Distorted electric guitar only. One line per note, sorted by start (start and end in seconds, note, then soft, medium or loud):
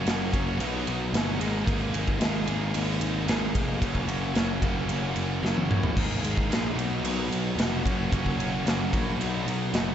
0.05 0.58 F#3 medium
0.05 0.33 A#3 medium
0.05 0.32 C#4 medium
0.05 0.30 F#4 medium
0.31 0.59 A#3 medium
0.31 0.58 C#4 medium
0.31 0.57 F#4 medium
0.59 1.12 B2 loud
0.59 1.13 F#3 loud
0.59 1.13 B3 loud
0.59 1.14 D#4 loud
0.59 1.14 F#4 loud
1.13 1.39 B2 loud
1.13 1.39 F#3 loud
1.13 1.39 B3 loud
1.13 1.39 D#4 loud
1.13 1.39 F#4 loud
1.39 1.63 G#3 medium
1.39 1.65 A#3 medium
1.39 1.65 D#4 loud
1.39 1.66 G#4 loud
1.64 2.17 G#3 loud
1.64 1.94 A#3 loud
1.64 1.93 D#4 loud
1.64 1.91 G#4 loud
1.92 2.19 A#3 medium
1.92 2.20 D#4 medium
1.92 2.20 G#4 medium
2.19 2.73 G#3 medium
2.19 2.48 A#3 medium
2.19 2.46 D#4 medium
2.19 2.45 G#4 medium
2.46 3.27 A#3 medium
2.46 3.27 D#4 medium
2.46 3.28 G#4 medium
3.27 3.79 G#3 medium
3.27 3.55 A#3 loud
3.27 3.53 D#4 loud
3.27 3.52 G#4 loud
3.53 3.79 A#3 medium
3.53 3.80 D#4 medium
3.53 3.79 G#4 medium
3.80 4.32 F#3 medium
3.80 4.09 A#3 loud
3.80 4.08 C#4 loud
3.80 4.06 F#4 medium
4.07 4.34 A#3 medium
4.07 4.34 C#4 medium
4.07 4.35 F#4 medium
4.34 4.88 F#3 medium
4.34 4.62 A#3 medium
4.34 4.62 C#4 medium
4.34 4.60 F#4 medium
4.61 5.42 A#3 medium
4.61 5.42 C#4 medium
4.61 5.43 F#4 medium
5.42 5.95 F#3 medium
5.42 5.70 A#3 medium
5.42 5.69 C#4 loud
5.42 5.68 F#4 loud
5.70 5.96 A#3 medium
5.70 5.96 C#4 medium
5.70 5.95 F#4 medium
5.96 6.49 G#3 medium
5.96 6.25 A#3 medium
5.96 6.23 D#4 medium
5.96 6.22 G#4 loud
6.23 6.50 A#3 medium
6.23 6.50 D#4 medium
6.23 6.51 G#4 medium
6.50 6.76 G#3 medium
6.50 6.76 A#3 medium
6.50 6.75 D#4 medium
6.50 6.75 G#4 medium
6.76 7.55 B2 medium
6.76 7.56 F#3 medium
6.76 7.56 B3 medium
6.76 7.56 D#4 medium
6.76 7.57 F#4 medium
7.56 7.83 B2 medium
7.56 7.83 F#3 loud
7.56 7.83 B3 loud
7.56 7.83 D#4 loud
7.56 7.83 F#4 loud
7.84 8.10 F#3 medium
7.84 8.11 A#3 medium
7.84 8.11 C#4 loud
7.84 8.12 F#4 medium
8.11 8.64 F#3 medium
8.11 8.40 A#3 loud
8.11 8.39 C#4 medium
8.11 8.37 F#4 loud
8.39 8.65 A#3 medium
8.39 8.66 C#4 medium
8.39 8.67 F#4 medium
8.66 9.18 F#3 medium
8.66 8.94 A#3 medium
8.66 8.93 C#4 medium
8.66 8.92 F#4 medium
8.93 9.19 A#3 medium
8.93 9.19 C#4 medium
8.93 9.18 F#4 medium
9.19 9.71 B2 loud
9.19 9.72 F#3 loud
9.19 9.73 B3 loud
9.19 9.73 D#4 loud
9.19 9.74 F#4 loud
9.73 9.95 B2 medium
9.73 9.95 F#3 loud
9.73 9.95 B3 loud
9.73 9.95 D#4 loud
9.73 9.95 F#4 loud